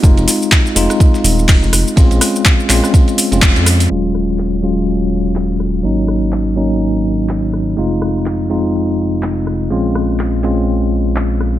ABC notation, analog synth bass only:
X:1
M:4/4
L:1/16
Q:"Swing 16ths" 1/4=124
K:Ebdor
V:1 name="Analog synth bass" clef=bass
F,,, F,,, z4 F,,, z3 E,,,3 F,,, F,,, z | B,,, B,,, z4 B,,, z4 F,,,2 F,,3 | E,,,16 | A,,,16 |
F,,,16 | B,,,16 |]